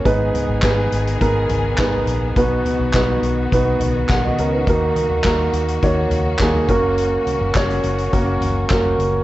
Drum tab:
HH |x-x-x-xxx-x-x-x-|x-x-x-x-x-x-x-x-|x-x-x-xxx-x-x-x-|x-x-xxxxx-x-x-x-|
CP |----x-------x---|----x-------x---|----x-------x---|----x-------x---|
SD |----o-------o---|----o-------o---|----o-------o---|----o-------o---|
FT |--o-------o--o--|--o-------o--o--|--o-------o--o--|--o-------o--o--|
BD |o---o---o---o---|o---o---o---o---|o---o---o---o-o-|----o---o---o---|